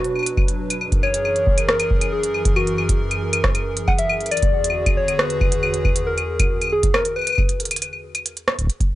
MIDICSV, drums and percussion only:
0, 0, Header, 1, 2, 480
1, 0, Start_track
1, 0, Tempo, 437956
1, 889, Time_signature, 4, 2, 24, 8
1, 9809, End_track
2, 0, Start_track
2, 0, Title_t, "Drums"
2, 49, Note_on_c, 9, 42, 54
2, 159, Note_off_c, 9, 42, 0
2, 170, Note_on_c, 9, 75, 34
2, 209, Note_off_c, 9, 75, 0
2, 209, Note_on_c, 9, 75, 49
2, 249, Note_off_c, 9, 75, 0
2, 249, Note_on_c, 9, 75, 59
2, 290, Note_on_c, 9, 42, 67
2, 359, Note_off_c, 9, 75, 0
2, 399, Note_off_c, 9, 42, 0
2, 408, Note_on_c, 9, 36, 124
2, 410, Note_on_c, 9, 75, 51
2, 518, Note_off_c, 9, 36, 0
2, 520, Note_off_c, 9, 75, 0
2, 530, Note_on_c, 9, 42, 52
2, 640, Note_off_c, 9, 42, 0
2, 770, Note_on_c, 9, 42, 65
2, 770, Note_on_c, 9, 75, 49
2, 879, Note_off_c, 9, 42, 0
2, 879, Note_off_c, 9, 75, 0
2, 889, Note_on_c, 9, 75, 52
2, 998, Note_off_c, 9, 75, 0
2, 1009, Note_on_c, 9, 36, 108
2, 1010, Note_on_c, 9, 42, 36
2, 1118, Note_off_c, 9, 36, 0
2, 1119, Note_off_c, 9, 42, 0
2, 1130, Note_on_c, 9, 75, 78
2, 1239, Note_off_c, 9, 75, 0
2, 1249, Note_on_c, 9, 42, 67
2, 1359, Note_off_c, 9, 42, 0
2, 1369, Note_on_c, 9, 75, 51
2, 1479, Note_off_c, 9, 75, 0
2, 1489, Note_on_c, 9, 42, 36
2, 1598, Note_off_c, 9, 42, 0
2, 1609, Note_on_c, 9, 36, 121
2, 1718, Note_off_c, 9, 36, 0
2, 1728, Note_on_c, 9, 42, 66
2, 1728, Note_on_c, 9, 75, 53
2, 1838, Note_off_c, 9, 42, 0
2, 1838, Note_off_c, 9, 75, 0
2, 1847, Note_on_c, 9, 37, 121
2, 1957, Note_off_c, 9, 37, 0
2, 1968, Note_on_c, 9, 42, 51
2, 1968, Note_on_c, 9, 75, 79
2, 2077, Note_off_c, 9, 42, 0
2, 2077, Note_off_c, 9, 75, 0
2, 2089, Note_on_c, 9, 36, 109
2, 2198, Note_off_c, 9, 36, 0
2, 2207, Note_on_c, 9, 42, 64
2, 2207, Note_on_c, 9, 75, 51
2, 2317, Note_off_c, 9, 42, 0
2, 2317, Note_off_c, 9, 75, 0
2, 2449, Note_on_c, 9, 42, 51
2, 2558, Note_off_c, 9, 42, 0
2, 2568, Note_on_c, 9, 75, 52
2, 2678, Note_off_c, 9, 75, 0
2, 2688, Note_on_c, 9, 36, 118
2, 2688, Note_on_c, 9, 42, 62
2, 2798, Note_off_c, 9, 36, 0
2, 2798, Note_off_c, 9, 42, 0
2, 2808, Note_on_c, 9, 75, 83
2, 2918, Note_off_c, 9, 75, 0
2, 2928, Note_on_c, 9, 42, 36
2, 3038, Note_off_c, 9, 42, 0
2, 3049, Note_on_c, 9, 75, 54
2, 3159, Note_off_c, 9, 75, 0
2, 3169, Note_on_c, 9, 36, 100
2, 3169, Note_on_c, 9, 42, 65
2, 3278, Note_off_c, 9, 36, 0
2, 3279, Note_off_c, 9, 42, 0
2, 3409, Note_on_c, 9, 42, 37
2, 3409, Note_on_c, 9, 75, 54
2, 3518, Note_off_c, 9, 42, 0
2, 3518, Note_off_c, 9, 75, 0
2, 3649, Note_on_c, 9, 42, 65
2, 3649, Note_on_c, 9, 75, 81
2, 3759, Note_off_c, 9, 42, 0
2, 3759, Note_off_c, 9, 75, 0
2, 3769, Note_on_c, 9, 36, 120
2, 3769, Note_on_c, 9, 37, 113
2, 3878, Note_off_c, 9, 36, 0
2, 3879, Note_off_c, 9, 37, 0
2, 3889, Note_on_c, 9, 42, 52
2, 3889, Note_on_c, 9, 75, 54
2, 3998, Note_off_c, 9, 42, 0
2, 3998, Note_off_c, 9, 75, 0
2, 4129, Note_on_c, 9, 42, 65
2, 4238, Note_off_c, 9, 42, 0
2, 4248, Note_on_c, 9, 75, 53
2, 4249, Note_on_c, 9, 36, 104
2, 4358, Note_off_c, 9, 36, 0
2, 4358, Note_off_c, 9, 75, 0
2, 4368, Note_on_c, 9, 42, 52
2, 4477, Note_off_c, 9, 42, 0
2, 4488, Note_on_c, 9, 75, 80
2, 4597, Note_off_c, 9, 75, 0
2, 4609, Note_on_c, 9, 42, 29
2, 4669, Note_off_c, 9, 42, 0
2, 4669, Note_on_c, 9, 42, 37
2, 4729, Note_off_c, 9, 42, 0
2, 4729, Note_on_c, 9, 42, 45
2, 4729, Note_on_c, 9, 75, 58
2, 4789, Note_off_c, 9, 42, 0
2, 4789, Note_on_c, 9, 42, 54
2, 4838, Note_off_c, 9, 75, 0
2, 4849, Note_on_c, 9, 36, 117
2, 4850, Note_off_c, 9, 42, 0
2, 4850, Note_on_c, 9, 42, 36
2, 4959, Note_off_c, 9, 36, 0
2, 4959, Note_off_c, 9, 42, 0
2, 5089, Note_on_c, 9, 42, 70
2, 5149, Note_on_c, 9, 75, 56
2, 5198, Note_off_c, 9, 42, 0
2, 5259, Note_off_c, 9, 75, 0
2, 5329, Note_on_c, 9, 36, 105
2, 5330, Note_on_c, 9, 42, 37
2, 5330, Note_on_c, 9, 75, 85
2, 5439, Note_off_c, 9, 36, 0
2, 5439, Note_off_c, 9, 42, 0
2, 5439, Note_off_c, 9, 75, 0
2, 5570, Note_on_c, 9, 42, 64
2, 5570, Note_on_c, 9, 75, 55
2, 5679, Note_off_c, 9, 42, 0
2, 5679, Note_off_c, 9, 75, 0
2, 5689, Note_on_c, 9, 37, 116
2, 5799, Note_off_c, 9, 37, 0
2, 5810, Note_on_c, 9, 42, 53
2, 5919, Note_off_c, 9, 42, 0
2, 5929, Note_on_c, 9, 36, 118
2, 5930, Note_on_c, 9, 75, 56
2, 6038, Note_off_c, 9, 36, 0
2, 6039, Note_off_c, 9, 75, 0
2, 6049, Note_on_c, 9, 42, 66
2, 6159, Note_off_c, 9, 42, 0
2, 6169, Note_on_c, 9, 75, 84
2, 6279, Note_off_c, 9, 75, 0
2, 6289, Note_on_c, 9, 42, 55
2, 6398, Note_off_c, 9, 42, 0
2, 6409, Note_on_c, 9, 36, 102
2, 6409, Note_on_c, 9, 75, 57
2, 6518, Note_off_c, 9, 36, 0
2, 6519, Note_off_c, 9, 75, 0
2, 6529, Note_on_c, 9, 42, 66
2, 6639, Note_off_c, 9, 42, 0
2, 6769, Note_on_c, 9, 42, 38
2, 6769, Note_on_c, 9, 75, 55
2, 6879, Note_off_c, 9, 42, 0
2, 6879, Note_off_c, 9, 75, 0
2, 7009, Note_on_c, 9, 36, 112
2, 7009, Note_on_c, 9, 42, 71
2, 7009, Note_on_c, 9, 75, 86
2, 7118, Note_off_c, 9, 36, 0
2, 7119, Note_off_c, 9, 42, 0
2, 7119, Note_off_c, 9, 75, 0
2, 7250, Note_on_c, 9, 42, 39
2, 7250, Note_on_c, 9, 75, 53
2, 7280, Note_off_c, 9, 75, 0
2, 7280, Note_on_c, 9, 75, 44
2, 7309, Note_off_c, 9, 75, 0
2, 7309, Note_on_c, 9, 75, 37
2, 7339, Note_off_c, 9, 75, 0
2, 7339, Note_on_c, 9, 75, 30
2, 7360, Note_off_c, 9, 42, 0
2, 7449, Note_off_c, 9, 75, 0
2, 7488, Note_on_c, 9, 42, 69
2, 7489, Note_on_c, 9, 36, 104
2, 7597, Note_off_c, 9, 42, 0
2, 7598, Note_off_c, 9, 36, 0
2, 7608, Note_on_c, 9, 37, 118
2, 7608, Note_on_c, 9, 75, 55
2, 7717, Note_off_c, 9, 37, 0
2, 7717, Note_off_c, 9, 75, 0
2, 7728, Note_on_c, 9, 42, 56
2, 7837, Note_off_c, 9, 42, 0
2, 7848, Note_on_c, 9, 75, 38
2, 7878, Note_off_c, 9, 75, 0
2, 7878, Note_on_c, 9, 75, 43
2, 7908, Note_off_c, 9, 75, 0
2, 7908, Note_on_c, 9, 75, 47
2, 7938, Note_off_c, 9, 75, 0
2, 7938, Note_on_c, 9, 75, 53
2, 7968, Note_off_c, 9, 75, 0
2, 7968, Note_on_c, 9, 42, 66
2, 7968, Note_on_c, 9, 75, 57
2, 7999, Note_off_c, 9, 75, 0
2, 7999, Note_on_c, 9, 75, 63
2, 8029, Note_off_c, 9, 75, 0
2, 8029, Note_on_c, 9, 75, 70
2, 8059, Note_off_c, 9, 75, 0
2, 8059, Note_on_c, 9, 75, 74
2, 8078, Note_off_c, 9, 42, 0
2, 8088, Note_on_c, 9, 36, 118
2, 8089, Note_off_c, 9, 75, 0
2, 8089, Note_on_c, 9, 75, 57
2, 8198, Note_off_c, 9, 36, 0
2, 8199, Note_off_c, 9, 75, 0
2, 8209, Note_on_c, 9, 42, 56
2, 8319, Note_off_c, 9, 42, 0
2, 8329, Note_on_c, 9, 42, 58
2, 8388, Note_off_c, 9, 42, 0
2, 8388, Note_on_c, 9, 42, 67
2, 8450, Note_off_c, 9, 42, 0
2, 8450, Note_on_c, 9, 42, 74
2, 8450, Note_on_c, 9, 75, 54
2, 8509, Note_off_c, 9, 42, 0
2, 8509, Note_on_c, 9, 42, 87
2, 8559, Note_off_c, 9, 75, 0
2, 8570, Note_off_c, 9, 42, 0
2, 8570, Note_on_c, 9, 42, 70
2, 8570, Note_on_c, 9, 75, 38
2, 8679, Note_off_c, 9, 42, 0
2, 8679, Note_off_c, 9, 75, 0
2, 8689, Note_on_c, 9, 75, 36
2, 8799, Note_off_c, 9, 75, 0
2, 8930, Note_on_c, 9, 42, 54
2, 8930, Note_on_c, 9, 75, 54
2, 9040, Note_off_c, 9, 42, 0
2, 9040, Note_off_c, 9, 75, 0
2, 9050, Note_on_c, 9, 42, 68
2, 9159, Note_off_c, 9, 42, 0
2, 9171, Note_on_c, 9, 42, 38
2, 9281, Note_off_c, 9, 42, 0
2, 9290, Note_on_c, 9, 37, 114
2, 9400, Note_off_c, 9, 37, 0
2, 9408, Note_on_c, 9, 36, 47
2, 9411, Note_on_c, 9, 42, 54
2, 9438, Note_off_c, 9, 36, 0
2, 9438, Note_on_c, 9, 36, 60
2, 9469, Note_off_c, 9, 36, 0
2, 9469, Note_on_c, 9, 36, 72
2, 9498, Note_off_c, 9, 36, 0
2, 9498, Note_on_c, 9, 36, 86
2, 9521, Note_off_c, 9, 42, 0
2, 9531, Note_on_c, 9, 42, 66
2, 9608, Note_off_c, 9, 36, 0
2, 9640, Note_off_c, 9, 42, 0
2, 9649, Note_on_c, 9, 36, 101
2, 9651, Note_on_c, 9, 42, 38
2, 9758, Note_off_c, 9, 36, 0
2, 9760, Note_off_c, 9, 42, 0
2, 9809, End_track
0, 0, End_of_file